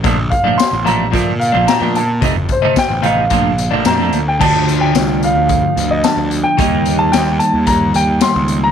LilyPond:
<<
  \new Staff \with { instrumentName = "Upright piano" } { \time 4/4 \key d \phrygian \tempo 4 = 110 r8 f''8 c'''8 bes''8 r8 f''8 bes''8 a''8 | r8 c''8 g''8 f''4. bes''8. g''16 | a''8. g''8. f''4~ f''16 ees''16 a''8. g''16~ | g''8. a''16 g''8 a''8 bes''8 g''8 c'''8. bes''16 | }
  \new Staff \with { instrumentName = "Clean electric guitar" } { \clef bass \time 4/4 \key d \phrygian <bes, f a d'>16 r8 <bes, f a d'>16 r8 <bes, f a d'>16 r16 <bes, f a d'>16 r8 <bes, f a d'>16 <bes, f a d'>16 <bes, f a d'>16 r8 | <c ees a ees'>16 r8 <c ees a ees'>16 r8 <c ees a ees'>16 r16 <bes, f a d'>16 r8 <bes, f a d'>16 <bes, f a d'>16 <bes, f a d'>16 r8 | <d f a d'>1 | <ees g bes ees'>1 | }
  \new Staff \with { instrumentName = "Picked electric bass" } { \clef bass \time 4/4 \key d \phrygian bes,,8 r8. a,,8. bes,8. bes,,16 r16 bes,8. | f,,8 r8. a,,8. bes,,8. bes,,16 f,8 d,8 | d,4 c,8. d,8 r16 d,8 r16 d,8 r16 | ees,4 ees,8 r16 ees,8. ees,8 r16 des,8. | }
  \new DrumStaff \with { instrumentName = "Drums" } \drummode { \time 4/4 <hh bd>8 <hh bd>8 <hh sn tamb>8 hh8 <hh bd>8 hh8 <hh sn tamb>8 hh8 | <hh bd>8 <hh bd>8 <hh bd sn tamb>8 hh8 <hh bd>8 hh8 <hh sn tamb>8 hh8 | <cymc bd>8 hh8 <hh sn tamb>8 hh8 <hh bd>8 hh8 <hh sn tamb>8 hh8 | <hh bd>8 hh8 <hh sn tamb>8 hh8 <hh bd>8 hh8 <hh sn tamb>8 hh8 | }
>>